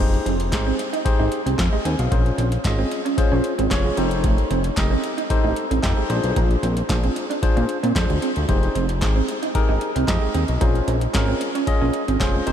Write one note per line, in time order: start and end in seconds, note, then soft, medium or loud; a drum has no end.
0.00 0.19 F1 loud
0.00 0.34 D#4 medium
0.00 0.34 G4 medium
0.00 0.34 G#4 medium
0.00 0.34 C5 medium
0.14 closed hi-hat soft
0.26 0.54 F1 loud
0.26 0.35 C4 medium
0.26 closed hi-hat medium
0.40 muted clean electric guitar stroke soft
0.40 closed hi-hat medium
0.52 0.72 G#1 medium
0.52 0.87 D#4 medium
0.52 0.87 G4 medium
0.52 0.87 G#4 medium
0.52 0.87 C5 medium
0.52 kick loud
0.52 snare loud
0.52 clap medium
0.52 closed hi-hat medium
0.67 0.74 C4 medium
0.79 muted clean electric guitar stroke soft
0.79 closed hi-hat medium
0.93 1.01 D#4 medium
0.93 closed hi-hat medium
1.05 1.40 D#4 medium
1.05 1.40 G4 medium
1.05 1.40 G#4 medium
1.05 1.40 C5 medium
1.05 kick loud
1.05 closed hi-hat medium
1.20 1.29 G#1 medium
1.20 1.28 D#4 medium
1.32 muted clean electric guitar stroke soft
1.32 closed hi-hat medium
1.46 1.55 C2 medium
1.46 1.54 C4 medium
1.46 closed hi-hat medium
1.58 1.69 F2 loud
1.58 muted clean electric guitar stroke soft
1.58 kick loud
1.58 snare loud
1.58 clap medium
1.58 closed hi-hat medium
1.73 1.81 G#3 medium
1.73 1.85 G4 medium
1.73 1.84 D#5 medium
1.85 1.96 D#2 medium
1.85 1.94 C4 medium
1.85 1.99 C5 medium
1.85 1.98 G#5 medium
1.85 closed hi-hat medium
1.99 2.08 B1 loud
1.99 2.11 G#4 medium
1.99 2.24 F5 medium
1.99 closed hi-hat medium
2.11 2.31 A#1 loud
2.11 2.21 A#3 medium
2.11 2.46 C#4 medium
2.11 2.46 F4 medium
2.11 2.46 G#4 medium
2.11 2.47 C5 medium
2.11 kick loud
2.11 closed hi-hat medium
2.26 closed hi-hat soft
2.38 2.58 A#1 loud
2.38 2.47 C4 medium
2.38 closed hi-hat medium
2.52 muted clean electric guitar stroke soft
2.52 closed hi-hat medium
2.64 2.84 G#1 medium
2.64 2.99 C#4 medium
2.64 3.00 F4 medium
2.64 3.00 G#4 medium
2.64 3.00 D#5 medium
2.64 kick loud
2.64 snare loud
2.64 clap medium
2.64 closed hi-hat medium
2.79 2.87 C4 medium
2.91 muted clean electric guitar stroke soft
2.91 closed hi-hat medium
3.05 3.13 C#4 medium
3.05 closed hi-hat medium
3.18 3.52 C#4 medium
3.18 3.53 F4 medium
3.18 3.53 G#4 medium
3.18 3.53 C5 medium
3.18 kick loud
3.18 closed hi-hat medium
3.32 3.41 A#1 medium
3.32 3.40 C#4 medium
3.44 muted clean electric guitar stroke soft
3.44 closed hi-hat medium
3.58 3.68 G#1 medium
3.58 3.66 C4 medium
3.58 closed hi-hat medium
3.71 3.90 F1 loud
3.71 3.97 C#4 medium
3.71 3.97 F4 medium
3.71 3.98 G#4 medium
3.71 3.98 C#5 loud
3.71 muted clean electric guitar stroke soft
3.71 kick loud
3.71 snare loud
3.71 clap medium
3.71 closed hi-hat medium
3.85 3.93 G#3 medium
3.97 4.37 F1 medium
3.97 4.06 C4 medium
3.97 4.62 D#4 medium
3.97 4.62 G4 medium
3.97 4.62 A4 medium
3.97 4.62 C5 medium
3.97 closed hi-hat medium
4.11 closed hi-hat medium
4.24 4.33 A3 medium
4.24 kick loud
4.24 closed hi-hat medium
4.38 closed hi-hat soft
4.51 4.70 F1 medium
4.51 4.60 C4 medium
4.51 closed hi-hat medium
4.64 muted clean electric guitar stroke soft
4.64 closed hi-hat medium
4.77 4.97 F1 medium
4.77 5.12 D#4 medium
4.77 5.12 G4 medium
4.77 5.12 A4 medium
4.77 5.12 D#5 medium
4.77 kick loud
4.77 snare loud
4.77 clap medium
4.77 closed hi-hat medium
4.91 4.99 C4 medium
5.04 muted clean electric guitar stroke soft
5.04 closed hi-hat medium
5.18 5.26 D#4 medium
5.18 closed hi-hat medium
5.30 5.65 D#4 medium
5.30 5.65 G4 medium
5.30 5.65 A4 medium
5.30 5.65 C5 medium
5.30 kick loud
5.30 closed hi-hat medium
5.44 5.54 A1 medium
5.44 5.52 D#4 medium
5.56 muted clean electric guitar stroke soft
5.56 closed hi-hat medium
5.71 5.80 A1 medium
5.71 5.79 C4 medium
5.71 closed hi-hat medium
5.83 5.94 F2 loud
5.83 6.10 D#4 medium
5.83 6.10 G4 medium
5.83 6.10 A4 medium
5.83 6.09 C5 medium
5.83 muted clean electric guitar stroke soft
5.83 kick loud
5.83 snare loud
5.83 clap medium
5.83 closed hi-hat medium
5.97 6.05 G#3 medium
6.09 6.20 A#1 loud
6.09 6.19 A#3 medium
6.09 6.74 D4 medium
6.09 6.74 F4 medium
6.09 6.74 G#4 medium
6.09 6.74 C5 medium
6.09 closed hi-hat medium
6.24 6.33 B1 medium
6.24 closed hi-hat medium
6.36 6.56 A#1 loud
6.36 6.45 A#3 medium
6.36 kick loud
6.36 closed hi-hat medium
6.51 closed hi-hat soft
6.63 6.83 A#1 loud
6.63 6.72 C4 medium
6.63 closed hi-hat medium
6.77 muted clean electric guitar stroke soft
6.77 closed hi-hat medium
6.89 7.09 A#1 medium
6.89 7.24 D4 medium
6.89 7.24 F4 medium
6.89 7.24 G#4 medium
6.89 7.24 C5 medium
6.89 kick loud
6.89 snare loud
6.89 clap medium
6.89 closed hi-hat medium
7.04 7.12 C4 medium
7.04 closed hi-hat soft
7.16 muted clean electric guitar stroke soft
7.16 closed hi-hat medium
7.30 7.38 D4 medium
7.30 closed hi-hat medium
7.42 7.77 D4 medium
7.42 7.77 F4 medium
7.42 7.77 G#4 medium
7.42 7.78 C5 medium
7.42 kick loud
7.42 closed hi-hat loud
7.57 7.66 A#2 medium
7.57 7.65 D4 medium
7.57 closed hi-hat soft
7.69 muted clean electric guitar stroke soft
7.69 closed hi-hat medium
7.83 7.93 A#2 loud
7.83 7.91 C4 medium
7.83 closed hi-hat medium
7.95 8.06 F2 loud
7.95 8.30 D4 medium
7.95 8.30 F4 medium
7.95 8.31 G#4 medium
7.95 8.31 C5 medium
7.95 muted clean electric guitar stroke soft
7.95 kick loud
7.95 snare loud
7.95 clap medium
7.95 closed hi-hat medium
8.10 8.19 D2 medium
8.10 8.18 G#3 medium
8.10 closed hi-hat soft
8.22 8.31 C4 medium
8.22 closed hi-hat medium
8.36 8.46 D2 medium
8.36 closed hi-hat soft
8.48 8.68 F1 loud
8.48 8.58 A#3 medium
8.48 8.83 D#4 medium
8.48 8.83 G4 medium
8.48 8.84 G#4 medium
8.48 8.84 C5 medium
8.48 kick loud
8.48 closed hi-hat medium
8.63 closed hi-hat soft
8.75 9.03 F1 loud
8.75 8.84 C4 medium
8.75 closed hi-hat medium
8.89 muted clean electric guitar stroke soft
8.89 closed hi-hat medium
9.01 9.21 G#1 medium
9.01 9.36 D#4 medium
9.01 9.37 G4 medium
9.01 9.37 G#4 medium
9.01 9.37 C5 medium
9.01 kick loud
9.01 snare loud
9.01 clap medium
9.01 closed hi-hat medium
9.16 9.24 C4 medium
9.28 muted clean electric guitar stroke soft
9.28 closed hi-hat medium
9.43 9.51 D#4 medium
9.43 closed hi-hat medium
9.55 9.90 D#4 medium
9.55 9.90 G4 medium
9.55 9.90 G#4 medium
9.55 9.90 A#4 loud
9.55 kick loud
9.55 closed hi-hat loud
9.69 9.79 G#1 medium
9.69 9.77 D#4 medium
9.81 muted clean electric guitar stroke soft
9.81 closed hi-hat medium
9.96 10.05 C2 medium
9.96 10.04 C4 medium
9.96 closed hi-hat medium
10.08 10.18 F2 loud
10.08 10.43 D#4 medium
10.08 10.43 G4 medium
10.08 10.43 G#4 medium
10.08 10.43 D#5 medium
10.08 muted clean electric guitar stroke soft
10.08 kick loud
10.08 snare loud
10.08 clap medium
10.08 closed hi-hat medium
10.22 10.30 G#3 medium
10.34 10.45 D#2 medium
10.34 10.44 C4 medium
10.34 closed hi-hat medium
10.48 10.58 B1 medium
10.48 closed hi-hat soft
10.61 10.81 A#1 loud
10.61 10.70 A#3 medium
10.61 10.96 C#4 medium
10.61 10.96 F4 medium
10.61 10.96 G#4 medium
10.61 10.96 C5 medium
10.61 kick loud
10.61 closed hi-hat medium
10.75 closed hi-hat soft
10.88 11.07 A#1 loud
10.88 10.97 C4 medium
10.88 closed hi-hat medium
11.01 muted clean electric guitar stroke soft
11.01 closed hi-hat medium
11.14 11.34 G#1 medium
11.14 11.49 C#4 medium
11.14 11.49 F4 medium
11.14 11.49 G#4 medium
11.14 11.49 A#4 medium
11.14 kick loud
11.14 snare loud
11.14 clap medium
11.14 closed hi-hat medium
11.28 11.36 C4 medium
11.41 muted clean electric guitar stroke soft
11.41 closed hi-hat medium
11.55 11.63 C#4 medium
11.55 closed hi-hat medium
11.67 12.02 C#4 medium
11.67 12.02 F4 medium
11.67 12.02 G#4 medium
11.67 12.02 D#5 medium
11.67 kick loud
11.67 closed hi-hat loud
11.81 11.91 A#1 medium
11.81 11.89 C#4 medium
11.93 muted clean electric guitar stroke soft
11.93 closed hi-hat medium
12.08 12.17 G#1 medium
12.08 12.16 C4 medium
12.08 closed hi-hat medium
12.20 12.40 F1 medium
12.20 12.47 C#4 medium
12.20 12.47 F4 medium
12.20 12.47 G#4 medium
12.20 12.46 C5 medium
12.20 muted clean electric guitar stroke soft
12.20 kick loud
12.20 snare loud
12.20 clap medium
12.20 closed hi-hat medium
12.34 12.43 G#3 medium
12.47 12.52 F1 loud
12.47 12.52 C4 medium
12.47 12.52 D#4 medium
12.47 12.52 G4 medium
12.47 12.52 A4 medium
12.47 12.52 C5 medium
12.47 closed hi-hat medium